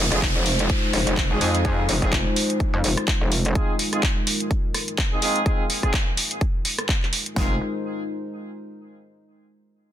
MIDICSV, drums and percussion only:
0, 0, Header, 1, 2, 480
1, 0, Start_track
1, 0, Key_signature, -4, "minor"
1, 0, Tempo, 476190
1, 1662, Time_signature, 4, 2, 24, 8
1, 10001, End_track
2, 0, Start_track
2, 0, Title_t, "Drums"
2, 118, Note_on_c, 9, 37, 55
2, 118, Note_on_c, 9, 42, 67
2, 219, Note_off_c, 9, 37, 0
2, 219, Note_off_c, 9, 42, 0
2, 222, Note_on_c, 9, 36, 115
2, 222, Note_on_c, 9, 42, 53
2, 225, Note_on_c, 9, 39, 118
2, 323, Note_off_c, 9, 36, 0
2, 323, Note_off_c, 9, 42, 0
2, 326, Note_off_c, 9, 39, 0
2, 461, Note_on_c, 9, 46, 101
2, 562, Note_off_c, 9, 46, 0
2, 597, Note_on_c, 9, 42, 65
2, 698, Note_off_c, 9, 42, 0
2, 701, Note_on_c, 9, 42, 54
2, 702, Note_on_c, 9, 36, 116
2, 802, Note_off_c, 9, 42, 0
2, 803, Note_off_c, 9, 36, 0
2, 942, Note_on_c, 9, 37, 59
2, 942, Note_on_c, 9, 46, 106
2, 1043, Note_off_c, 9, 37, 0
2, 1043, Note_off_c, 9, 46, 0
2, 1078, Note_on_c, 9, 42, 67
2, 1179, Note_off_c, 9, 42, 0
2, 1182, Note_on_c, 9, 36, 116
2, 1182, Note_on_c, 9, 42, 57
2, 1185, Note_on_c, 9, 39, 123
2, 1283, Note_off_c, 9, 36, 0
2, 1283, Note_off_c, 9, 42, 0
2, 1286, Note_off_c, 9, 39, 0
2, 1422, Note_on_c, 9, 46, 101
2, 1522, Note_off_c, 9, 46, 0
2, 1558, Note_on_c, 9, 42, 69
2, 1659, Note_off_c, 9, 42, 0
2, 1661, Note_on_c, 9, 42, 54
2, 1662, Note_on_c, 9, 36, 121
2, 1762, Note_off_c, 9, 42, 0
2, 1763, Note_off_c, 9, 36, 0
2, 1902, Note_on_c, 9, 46, 104
2, 2003, Note_off_c, 9, 46, 0
2, 2038, Note_on_c, 9, 36, 61
2, 2038, Note_on_c, 9, 42, 63
2, 2139, Note_off_c, 9, 36, 0
2, 2139, Note_off_c, 9, 42, 0
2, 2143, Note_on_c, 9, 36, 117
2, 2143, Note_on_c, 9, 42, 51
2, 2146, Note_on_c, 9, 39, 119
2, 2243, Note_off_c, 9, 36, 0
2, 2244, Note_off_c, 9, 42, 0
2, 2247, Note_off_c, 9, 39, 0
2, 2383, Note_on_c, 9, 46, 106
2, 2484, Note_off_c, 9, 46, 0
2, 2519, Note_on_c, 9, 42, 64
2, 2620, Note_off_c, 9, 42, 0
2, 2623, Note_on_c, 9, 36, 127
2, 2623, Note_on_c, 9, 42, 51
2, 2723, Note_off_c, 9, 36, 0
2, 2724, Note_off_c, 9, 42, 0
2, 2863, Note_on_c, 9, 46, 106
2, 2963, Note_off_c, 9, 46, 0
2, 2998, Note_on_c, 9, 37, 76
2, 2998, Note_on_c, 9, 42, 66
2, 3099, Note_off_c, 9, 37, 0
2, 3099, Note_off_c, 9, 42, 0
2, 3102, Note_on_c, 9, 42, 53
2, 3103, Note_on_c, 9, 36, 124
2, 3105, Note_on_c, 9, 39, 127
2, 3203, Note_off_c, 9, 36, 0
2, 3203, Note_off_c, 9, 42, 0
2, 3206, Note_off_c, 9, 39, 0
2, 3343, Note_on_c, 9, 46, 104
2, 3443, Note_off_c, 9, 46, 0
2, 3478, Note_on_c, 9, 42, 62
2, 3579, Note_off_c, 9, 42, 0
2, 3582, Note_on_c, 9, 42, 51
2, 3583, Note_on_c, 9, 36, 127
2, 3683, Note_off_c, 9, 42, 0
2, 3684, Note_off_c, 9, 36, 0
2, 3822, Note_on_c, 9, 46, 107
2, 3923, Note_off_c, 9, 46, 0
2, 3958, Note_on_c, 9, 37, 57
2, 3958, Note_on_c, 9, 42, 62
2, 4059, Note_off_c, 9, 37, 0
2, 4059, Note_off_c, 9, 42, 0
2, 4063, Note_on_c, 9, 36, 119
2, 4063, Note_on_c, 9, 42, 50
2, 4066, Note_on_c, 9, 39, 117
2, 4163, Note_off_c, 9, 42, 0
2, 4164, Note_off_c, 9, 36, 0
2, 4167, Note_off_c, 9, 39, 0
2, 4303, Note_on_c, 9, 46, 109
2, 4404, Note_off_c, 9, 46, 0
2, 4439, Note_on_c, 9, 42, 63
2, 4540, Note_off_c, 9, 42, 0
2, 4543, Note_on_c, 9, 36, 125
2, 4544, Note_on_c, 9, 42, 51
2, 4644, Note_off_c, 9, 36, 0
2, 4644, Note_off_c, 9, 42, 0
2, 4783, Note_on_c, 9, 37, 60
2, 4783, Note_on_c, 9, 46, 114
2, 4884, Note_off_c, 9, 37, 0
2, 4884, Note_off_c, 9, 46, 0
2, 4919, Note_on_c, 9, 42, 62
2, 5019, Note_off_c, 9, 42, 0
2, 5023, Note_on_c, 9, 36, 122
2, 5024, Note_on_c, 9, 42, 52
2, 5027, Note_on_c, 9, 39, 124
2, 5124, Note_off_c, 9, 36, 0
2, 5124, Note_off_c, 9, 42, 0
2, 5127, Note_off_c, 9, 39, 0
2, 5263, Note_on_c, 9, 46, 106
2, 5364, Note_off_c, 9, 46, 0
2, 5399, Note_on_c, 9, 42, 63
2, 5500, Note_off_c, 9, 42, 0
2, 5503, Note_on_c, 9, 36, 125
2, 5503, Note_on_c, 9, 42, 52
2, 5604, Note_off_c, 9, 36, 0
2, 5604, Note_off_c, 9, 42, 0
2, 5743, Note_on_c, 9, 46, 104
2, 5844, Note_off_c, 9, 46, 0
2, 5879, Note_on_c, 9, 36, 60
2, 5879, Note_on_c, 9, 37, 61
2, 5980, Note_off_c, 9, 36, 0
2, 5980, Note_off_c, 9, 37, 0
2, 5983, Note_on_c, 9, 36, 117
2, 5984, Note_on_c, 9, 42, 49
2, 5987, Note_on_c, 9, 39, 116
2, 6084, Note_off_c, 9, 36, 0
2, 6085, Note_off_c, 9, 42, 0
2, 6088, Note_off_c, 9, 39, 0
2, 6223, Note_on_c, 9, 46, 109
2, 6324, Note_off_c, 9, 46, 0
2, 6359, Note_on_c, 9, 42, 62
2, 6460, Note_off_c, 9, 42, 0
2, 6463, Note_on_c, 9, 36, 124
2, 6463, Note_on_c, 9, 42, 48
2, 6564, Note_off_c, 9, 36, 0
2, 6564, Note_off_c, 9, 42, 0
2, 6703, Note_on_c, 9, 46, 107
2, 6804, Note_off_c, 9, 46, 0
2, 6839, Note_on_c, 9, 37, 80
2, 6839, Note_on_c, 9, 42, 62
2, 6940, Note_off_c, 9, 37, 0
2, 6940, Note_off_c, 9, 42, 0
2, 6943, Note_on_c, 9, 36, 122
2, 6943, Note_on_c, 9, 42, 51
2, 6946, Note_on_c, 9, 39, 120
2, 7043, Note_off_c, 9, 42, 0
2, 7044, Note_off_c, 9, 36, 0
2, 7047, Note_off_c, 9, 39, 0
2, 7082, Note_on_c, 9, 39, 37
2, 7183, Note_off_c, 9, 39, 0
2, 7184, Note_on_c, 9, 46, 102
2, 7285, Note_off_c, 9, 46, 0
2, 7320, Note_on_c, 9, 42, 60
2, 7421, Note_off_c, 9, 42, 0
2, 7423, Note_on_c, 9, 36, 103
2, 7423, Note_on_c, 9, 38, 103
2, 7524, Note_off_c, 9, 36, 0
2, 7524, Note_off_c, 9, 38, 0
2, 10001, End_track
0, 0, End_of_file